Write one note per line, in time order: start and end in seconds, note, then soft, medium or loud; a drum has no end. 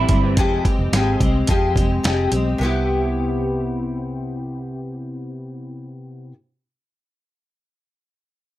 0.00 0.22 G3 medium
0.00 0.22 E4 medium
0.09 0.37 G1 medium
0.09 0.38 C4 soft
0.09 0.37 E4 medium
0.09 kick medium
0.09 closed hi-hat medium
0.13 0.38 G3 soft
0.23 0.50 E3 medium
0.23 0.49 C4 medium
0.37 0.59 F1 medium
0.37 0.65 F3 medium
0.37 0.65 G#3 medium
0.37 0.66 C4 medium
0.37 0.64 G4 medium
0.37 kick loud
0.37 closed hi-hat medium
0.65 0.93 G#3 soft
0.65 0.93 C4 soft
0.65 0.92 G4 medium
0.65 kick medium
0.65 closed hi-hat medium
0.79 0.90 F1 medium
0.92 1.15 G#1 medium
0.92 1.20 F3 medium
0.92 1.21 G#3 medium
0.92 1.21 C4 medium
0.92 snare medium
0.92 closed hi-hat medium
0.97 1.19 G4 medium
1.20 1.43 C2 medium
1.20 1.48 G#3 soft
1.20 1.49 C4 medium
1.20 1.48 G4 medium
1.20 kick medium
1.20 closed hi-hat medium
1.47 1.77 F2 medium
1.47 1.76 F3 medium
1.47 1.76 G#3 medium
1.47 1.77 C4 medium
1.47 1.75 G4 medium
1.47 kick medium
1.47 closed hi-hat medium
1.76 1.98 F1 medium
1.76 2.05 C4 soft
1.76 2.04 G4 medium
1.76 kick medium
1.76 closed hi-hat medium
1.80 2.04 G#3 soft
2.03 2.26 F1 medium
2.03 2.31 F3 medium
2.03 2.32 G#3 medium
2.03 2.32 C4 medium
2.03 2.30 G4 medium
2.03 snare loud
2.03 closed hi-hat medium
2.32 2.54 B1 medium
2.32 2.61 G#3 soft
2.32 2.60 C4 soft
2.32 2.59 G4 soft
2.32 closed hi-hat medium
2.58 6.28 C2 medium
2.58 6.31 C3 medium
2.58 6.33 B3 medium
2.63 6.34 E4 medium
2.63 6.34 G4 medium